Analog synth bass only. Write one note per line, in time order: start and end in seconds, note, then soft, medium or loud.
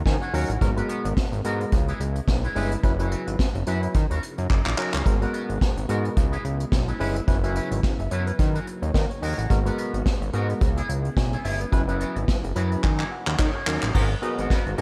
0.06 0.17 D#3 loud
0.33 0.45 D#2 medium
0.49 0.58 A1 medium
0.62 0.82 G#1 loud
1.05 1.14 G#1 loud
1.32 1.42 G#1 loud
1.45 1.65 G#2 loud
1.73 1.93 C#2 loud
2.00 2.21 C#2 medium
2.28 2.48 B1 medium
2.56 2.77 G1 loud
2.84 3.16 F#1 loud
3.27 3.36 G#1 medium
3.55 3.64 F#1 loud
3.67 3.88 F#2 loud
3.95 4.06 D#3 medium
4.10 4.19 D#2 medium
4.38 4.47 F#2 medium
4.50 4.62 F#1 medium
4.66 4.75 A#1 medium
4.94 5.03 C#2 medium
5.06 5.26 G#1 loud
5.49 5.58 G#1 loud
5.77 5.86 G#1 loud
5.89 6.10 G#2 loud
6.17 6.38 C#2 loud
6.45 6.65 C#2 medium
6.72 6.93 B1 medium
7.00 7.21 G1 medium
7.28 7.60 F#1 loud
7.71 7.80 G#1 medium
7.99 8.08 F#1 loud
8.12 8.32 F#2 loud
8.39 8.60 D#3 loud
8.82 8.91 D#2 loud
8.94 9.06 D#3 loud
9.22 9.34 D#2 loud
9.38 9.47 A1 medium
9.50 9.71 G#1 loud
9.94 10.03 G#1 loud
10.21 10.30 G#1 loud
10.33 10.54 G#2 loud
10.61 10.82 C#2 loud
10.89 11.10 C#2 medium
11.17 11.37 B1 medium
11.45 11.65 G1 medium
11.73 12.05 F#1 loud
12.16 12.25 G#1 medium
12.44 12.53 F#1 loud
12.56 12.76 F#2 medium
12.84 13.04 D#3 loud
13.27 13.36 D#2 loud
13.39 13.51 D#3 loud
13.67 13.79 D#2 medium
13.83 13.92 A1 medium
13.95 14.15 G#1 loud
14.38 14.47 G#1 loud
14.66 14.75 G#1 loud